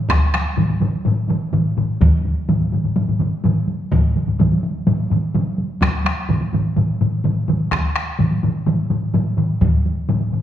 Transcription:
0.10 taiko rim medium
0.10 taiko loud
0.10 taiko high medium
0.34 taiko rim medium
0.34 taiko high medium
0.46 taiko high soft
0.57 taiko low-mid medium
0.57 taiko mid loud
0.57 taiko high medium
0.70 taiko high medium
0.81 taiko low-mid loud
0.81 taiko mid medium
0.81 taiko high medium
0.93 taiko high soft
1.05 taiko low-mid loud
1.05 taiko mid loud
1.05 taiko high medium
1.17 taiko high soft
1.29 taiko low-mid loud
1.29 taiko mid medium
1.29 taiko high medium
1.41 taiko high soft
1.53 taiko low-mid loud
1.53 taiko mid loud
1.53 taiko high medium
1.65 taiko high soft
1.77 taiko low-mid medium
1.77 taiko mid medium
1.77 taiko high medium
1.89 taiko high soft
2.01 taiko loud
2.01 taiko low-mid medium
2.01 taiko mid loud
2.01 taiko high medium
2.25 taiko high medium
2.37 taiko high soft
2.49 taiko low-mid medium
2.49 taiko mid loud
2.49 taiko high medium
2.61 taiko high medium
2.72 taiko low-mid medium
2.72 taiko mid medium
2.72 taiko high medium
2.84 taiko low-mid medium
2.84 taiko mid medium
2.84 taiko high soft
2.96 taiko low-mid medium
2.96 taiko mid medium
2.96 taiko high medium
3.08 taiko low-mid medium
3.08 taiko mid medium
3.08 taiko high soft
3.19 taiko low-mid medium
3.19 taiko mid loud
3.19 taiko high medium
3.31 taiko high soft
3.44 taiko low-mid loud
3.44 taiko mid loud
3.44 taiko high medium
3.56 taiko high soft
3.68 taiko high medium
3.80 taiko high soft
3.92 taiko loud
3.92 taiko low-mid medium
3.92 taiko mid loud
3.92 taiko high medium
4.04 taiko high soft
4.16 taiko low-mid medium
4.16 taiko mid medium
4.16 taiko high medium
4.28 taiko low-mid medium
4.28 taiko mid medium
4.28 taiko high soft
4.39 taiko medium
4.39 taiko low-mid loud
4.39 taiko mid loud
4.39 taiko high medium
4.52 taiko high medium
4.64 taiko high medium
4.75 taiko high soft
4.87 taiko low-mid loud
4.87 taiko mid loud
4.87 taiko high medium
4.99 taiko high soft
5.10 taiko low-mid medium
5.10 taiko mid loud
5.10 taiko high medium
5.23 taiko high soft
5.34 taiko low-mid loud
5.34 taiko mid medium
5.34 taiko high medium
5.47 taiko high soft
5.58 taiko high medium
5.70 taiko high soft
5.82 taiko rim medium
5.82 taiko loud
5.82 taiko high medium
5.94 taiko high soft
6.05 taiko rim medium
6.05 taiko high medium
6.18 taiko high soft
6.29 taiko low-mid loud
6.29 taiko mid loud
6.29 taiko high medium
6.41 taiko high medium
6.53 taiko low-mid loud
6.53 taiko mid medium
6.53 taiko high medium
6.65 taiko high soft
6.76 taiko low-mid loud
6.76 taiko mid medium
6.76 taiko high medium
6.88 taiko high soft
7.01 taiko low-mid medium
7.01 taiko mid medium
7.01 taiko high medium
7.12 taiko high soft
7.24 taiko low-mid medium
7.24 taiko mid loud
7.24 taiko high medium
7.36 taiko high soft
7.48 taiko low-mid loud
7.48 taiko mid loud
7.48 taiko high medium
7.60 taiko high soft
7.72 taiko rim medium
7.72 taiko medium
7.72 taiko high medium
7.84 taiko high soft
7.96 taiko rim medium
8.08 taiko high soft
8.19 taiko low-mid medium
8.19 taiko mid loud
8.19 taiko high medium
8.31 taiko high medium
8.43 taiko low-mid loud
8.43 taiko mid loud
8.43 taiko high medium
8.54 taiko high soft
8.66 taiko low-mid loud
8.66 taiko mid medium
8.66 taiko high medium
8.79 taiko high soft
8.90 taiko low-mid medium
8.90 taiko mid medium
8.90 taiko high medium
9.03 taiko high soft
9.14 taiko low-mid loud
9.14 taiko mid medium
9.14 taiko high medium
9.26 taiko high soft
9.37 taiko low-mid loud
9.37 taiko mid medium
9.37 taiko high medium
9.50 taiko high soft
9.61 taiko medium
9.61 taiko low-mid medium
9.61 taiko mid loud
9.61 taiko high medium
9.74 taiko high soft
9.86 taiko high medium
9.97 taiko high soft
10.09 taiko low-mid medium
10.09 taiko mid loud
10.09 taiko high medium
10.21 taiko high medium
10.32 taiko low-mid medium
10.32 taiko mid medium

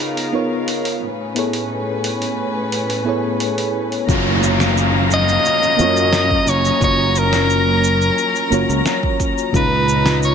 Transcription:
0.00 0.98 C#3 medium
0.00 0.28 B3 medium
0.00 1.00 B3 medium
0.00 0.29 D#4 medium
0.00 0.99 D#4 medium
0.00 0.29 F4 medium
0.00 0.30 A#4 medium
0.00 0.98 A#4 medium
0.00 0.31 C#5 medium
0.00 0.98 F5 medium
0.00 open hi-hat medium
0.17 open hi-hat soft
0.33 0.99 B3 medium
0.33 0.99 D#4 medium
0.33 1.00 F4 medium
0.33 1.00 A#4 medium
0.33 1.00 C#5 medium
0.68 open hi-hat medium
0.85 open hi-hat soft
1.02 4.06 A2 medium
1.02 4.06 C#4 medium
1.02 4.06 B4 medium
1.35 3.02 B3 medium
1.35 3.02 E4 medium
1.35 3.03 G#4 medium
1.35 3.03 A4 medium
1.35 open hi-hat medium
1.39 3.04 C#5 medium
1.53 open hi-hat soft
2.04 open hi-hat medium
2.22 open hi-hat soft
2.72 open hi-hat medium
2.90 open hi-hat soft
3.04 4.04 B3 medium
3.04 4.04 E4 medium
3.04 4.05 G#4 medium
3.04 4.05 A4 medium
3.09 4.06 C#5 medium
3.40 open hi-hat medium
3.58 open hi-hat soft
3.92 open hi-hat soft
4.07 5.36 F#1 loud
4.07 9.50 F#3 medium
4.07 5.74 A#3 medium
4.07 5.75 C#4 medium
4.07 9.50 C#4 medium
4.07 5.75 F4 medium
4.07 5.76 F#4 medium
4.07 5.76 C#5 medium
4.07 6.79 F5 medium
4.07 10.35 A#5 medium
4.07 kick loud
4.07 downlifter medium
4.07 shaker soft
4.43 shaker medium
4.60 snare medium
4.60 shaker soft
4.77 shaker soft
5.11 6.51 D#5 loud
5.11 shaker medium
5.28 shaker soft
5.45 shaker soft
5.63 shaker soft
5.77 6.38 F#2 medium
5.77 6.76 A#3 medium
5.77 6.77 C#4 medium
5.77 6.77 F4 medium
5.77 6.78 F#4 medium
5.77 shaker medium
5.81 6.78 C#5 medium
5.96 shaker soft
6.13 snare medium
6.13 shaker soft
6.31 kick medium
6.47 6.69 F#1 medium
6.47 6.82 C#5 loud
6.47 shaker medium
6.65 shaker soft
6.80 8.08 F#1 loud
6.80 8.47 A#3 medium
6.80 8.47 C#4 medium
6.80 8.48 F4 medium
6.80 8.49 F#4 medium
6.80 kick loud
6.80 shaker soft
6.84 7.20 C#5 loud
6.84 8.49 C#5 medium
7.16 9.21 A#4 medium
7.16 shaker medium
7.33 snare medium
7.33 shaker soft
7.50 shaker soft
7.84 shaker medium
8.01 shaker soft
8.18 shaker soft
8.35 shaker soft
8.50 8.63 F#1 medium
8.50 9.49 A#3 medium
8.50 9.50 C#4 medium
8.50 9.50 F4 medium
8.50 9.51 F#4 medium
8.50 9.51 C#5 medium
8.50 shaker medium
8.69 8.80 C#2 loud
8.69 shaker soft
8.86 snare medium
8.86 shaker soft
9.03 kick loud
9.20 kick loud
9.20 shaker medium
9.38 shaker soft
9.52 10.35 C#2 loud
9.52 10.35 A#2 medium
9.52 10.35 C#3 medium
9.52 10.35 C#4 medium
9.52 10.35 D#4 medium
9.52 10.35 F4 medium
9.52 10.35 B4 medium
9.52 kick loud
9.52 shaker soft
9.56 10.19 B4 loud
9.89 shaker medium
10.06 snare medium
10.06 shaker soft
10.23 10.35 C#5 loud
10.23 shaker soft

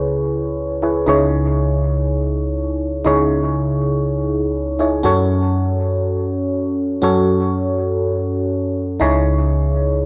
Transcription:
0.00 1.04 C#2 medium
0.00 1.04 C#3 medium
0.00 0.79 E4 medium
0.00 0.79 G#4 medium
0.00 0.80 B4 medium
0.00 0.80 C#5 medium
0.82 1.06 E4 soft
0.82 1.07 G#4 soft
0.82 1.08 B4 soft
0.82 1.08 C#5 medium
1.06 3.02 C#2 medium
1.06 3.02 C#3 medium
1.06 3.01 D#4 medium
1.06 3.02 E4 medium
1.06 3.02 G#4 medium
1.06 3.03 C#5 medium
3.05 5.00 C#2 medium
3.05 5.00 C#3 medium
3.05 4.75 D#4 medium
3.05 4.76 E4 medium
3.05 4.76 G#4 medium
3.05 4.77 C#5 medium
4.79 5.04 D#4 medium
4.79 5.04 E4 soft
4.79 5.05 G#4 soft
4.79 5.04 C#5 medium
5.03 6.99 F#2 medium
5.03 6.98 C#4 medium
5.03 6.99 F#4 medium
5.03 6.99 A4 medium
5.03 6.99 C#5 medium
7.02 8.97 F#2 medium
7.02 8.97 C#4 medium
7.02 8.97 F#4 medium
7.02 8.97 A4 medium
7.02 8.98 C#5 medium
9.00 10.06 C#2 medium
9.00 10.06 C#3 medium
9.00 10.06 D#4 medium
9.00 10.06 E4 medium
9.00 10.06 G#4 medium
9.00 10.06 C#5 medium

